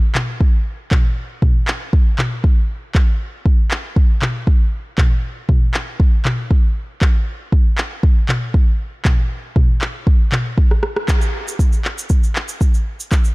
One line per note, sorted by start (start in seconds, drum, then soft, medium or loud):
0.15 clap medium
0.15 mid tom medium
0.41 kick loud
0.91 kick loud
0.91 clap medium
0.91 mid tom medium
1.42 kick loud
1.42 mid tom medium
1.68 clap medium
1.93 kick loud
2.18 clap medium
2.18 mid tom medium
2.44 kick loud
2.95 kick loud
2.95 clap medium
3.46 kick loud
3.71 clap medium
3.96 kick loud
4.22 clap medium
4.22 mid tom medium
4.47 kick loud
4.98 kick loud
4.98 clap medium
4.98 mid tom medium
5.49 kick loud
5.49 mid tom medium
5.74 clap medium
6.00 kick loud
6.25 clap medium
6.25 mid tom medium
6.51 kick loud
7.02 kick loud
7.02 clap medium
7.52 kick loud
7.78 clap medium
8.03 kick loud
8.29 clap medium
8.29 mid tom medium
8.54 kick loud
9.05 kick loud
9.05 clap medium
9.05 mid tom medium
9.56 kick loud
9.56 mid tom medium
9.81 clap medium
10.07 kick loud
10.32 clap medium
10.32 mid tom medium
10.58 kick loud
10.71 cross-stick medium
10.83 cross-stick medium
10.96 cross-stick medium
11.08 kick loud
11.08 clap medium
11.08 cabasa medium
11.22 cabasa soft
11.48 cabasa medium
11.59 kick medium
11.59 cabasa medium
11.73 cabasa soft
11.85 clap medium
11.98 cabasa medium
12.10 kick loud
12.10 cabasa medium
12.24 cabasa soft
12.36 clap medium
12.48 cabasa medium
12.61 kick medium
12.61 cabasa medium
12.74 cabasa soft
13.00 cabasa medium
13.12 kick loud
13.12 clap medium
13.12 cabasa medium
13.25 cabasa soft